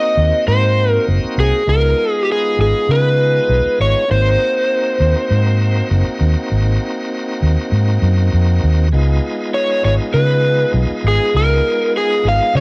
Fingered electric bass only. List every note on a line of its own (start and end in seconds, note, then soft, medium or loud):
0.17 0.30 D#2 medium
0.48 0.97 G#2 medium
1.08 1.21 F#1 loud
1.38 1.51 C2 medium
1.67 1.93 C#2 medium
2.58 2.72 G#1 medium
2.89 3.39 C#3 medium
3.49 3.63 B1 loud
3.80 3.93 G#1 loud
4.11 4.35 G#1 medium
5.00 5.13 D#2 medium
5.31 5.81 G#2 medium
5.91 6.04 F#1 loud
6.21 6.34 D#2 loud
6.51 6.76 G#1 medium
7.42 7.56 D#2 medium
7.72 7.97 G#2 medium
8.02 8.29 F#2 medium
8.33 8.60 F2 medium
8.63 8.90 D#2 medium
8.93 9.18 C#2 medium
9.85 9.98 G#1 medium
10.14 10.64 C#3 medium
10.74 10.87 B1 loud
11.04 11.18 G#1 loud
11.35 11.60 C#2 medium
12.25 12.38 G#1 medium
12.55 12.60 C#3 loud